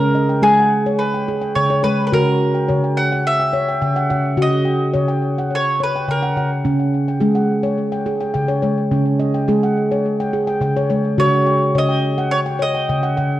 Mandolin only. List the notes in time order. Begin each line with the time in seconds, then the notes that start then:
Already playing: A#4
0.43 G#4
0.99 B4
1.55 C#5
1.84 B4
2.07 B4
2.13 A#4
2.97 F#5
3.27 E5
4.42 D#5
5.55 C#5
5.84 B4
6.11 A#4
11.20 C#5
11.78 D#5
12.31 C#5
12.62 D#5